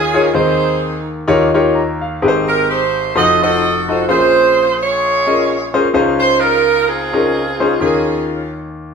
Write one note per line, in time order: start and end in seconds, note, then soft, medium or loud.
0.00 0.30 D#2 medium
0.00 0.30 D#3 medium
0.00 0.30 C#4 medium
0.00 0.30 F4 medium
0.00 0.33 G#4 loud
0.14 0.26 D#4 medium
0.14 0.26 F4 medium
0.14 0.26 G#4 medium
0.14 0.26 A#4 medium
0.14 0.26 C#5 medium
0.34 1.23 D#2 medium
0.34 1.24 D#3 medium
0.34 0.92 C4 medium
0.34 0.92 D#4 medium
0.34 1.24 D#4 medium
0.34 0.92 G#4 medium
0.34 1.24 G#4 medium
0.34 0.81 C5 medium
0.34 0.92 C5 medium
0.34 0.92 D#5 medium
1.28 2.17 D#2 medium
1.28 2.17 D#3 medium
1.28 1.49 D#4 loud
1.28 1.49 F4 medium
1.28 1.49 G4 medium
1.28 1.49 A#4 medium
1.28 1.49 C#5 loud
1.54 1.80 D#4 medium
1.54 1.80 F4 medium
1.54 1.80 G4 medium
1.54 1.80 A#4 medium
1.54 1.80 C#5 medium
1.75 2.00 A#5 medium
2.01 2.45 F5 medium
2.22 3.11 G#1 medium
2.22 3.11 G#2 medium
2.22 2.79 C4 medium
2.22 2.79 D#4 medium
2.22 2.79 G4 medium
2.22 2.79 G#4 medium
2.22 2.28 B4 medium
2.28 2.82 C5 loud
2.49 2.67 A#4 medium
2.70 3.12 D#4 medium
2.70 3.12 G4 medium
2.70 3.15 C5 loud
3.15 4.04 F1 medium
3.15 4.04 F2 medium
3.15 3.36 D#4 medium
3.15 3.36 F4 medium
3.15 3.36 F#4 medium
3.15 3.41 F#4 medium
3.15 3.36 A4 medium
3.15 3.41 A4 medium
3.15 3.36 C5 medium
3.15 3.40 D#5 loud
3.42 3.67 D#4 medium
3.42 3.67 F4 medium
3.42 3.67 F#4 medium
3.42 4.04 F#4 medium
3.42 4.04 A4 medium
3.42 3.67 A4 medium
3.42 3.68 C5 medium
3.42 3.85 D#5 loud
3.88 4.00 D#4 medium
3.88 4.00 F4 medium
3.88 4.00 F#4 medium
3.88 4.00 A4 medium
3.88 4.08 C5 medium
3.88 4.00 D#5 medium
4.08 5.91 A#1 medium
4.08 5.91 A#2 medium
4.08 4.66 C#4 medium
4.08 4.66 F4 medium
4.08 4.81 F4 medium
4.08 4.81 G#4 medium
4.08 4.66 G#4 medium
4.08 4.66 A#4 medium
4.08 4.66 C5 medium
4.08 4.78 C5 loud
4.82 5.71 F4 medium
4.82 5.71 G#4 medium
4.82 5.75 C#5 medium
5.27 5.53 C#4 medium
5.27 5.53 F4 medium
5.27 5.53 G#4 medium
5.27 5.53 A#4 medium
5.27 5.53 D#5 medium
5.74 5.86 C#4 medium
5.74 5.86 F4 medium
5.74 5.86 G#4 medium
5.74 5.86 A#4 medium
5.74 5.86 C5 medium
5.94 7.77 C#2 medium
5.94 7.77 C#3 medium
5.94 6.52 C#4 medium
5.94 6.52 D#4 medium
5.94 6.52 F4 medium
5.94 6.52 G#4 medium
5.94 6.52 C5 medium
6.20 6.39 C5 loud
6.40 7.30 D#4 medium
6.40 6.87 F4 medium
6.40 6.87 A#4 loud
6.88 7.77 C4 medium
6.88 7.77 F4 medium
6.88 7.80 G#4 loud
7.13 7.39 C#4 medium
7.13 7.39 D#4 medium
7.13 7.39 F4 medium
7.13 7.39 G#4 medium
7.13 7.39 A#4 medium
7.60 7.73 C#4 medium
7.60 7.73 D#4 medium
7.60 7.73 F4 medium
7.60 7.73 G#4 medium
7.60 7.73 C5 medium
7.80 8.94 D#2 medium
7.80 8.94 D#3 medium
7.80 8.38 C#4 medium
7.80 8.70 C#4 medium
7.80 8.38 D#4 medium
7.80 8.38 F4 medium
7.80 8.70 F4 medium
7.80 8.38 G#4 medium
7.80 8.25 G#4 medium
7.80 8.38 A#4 medium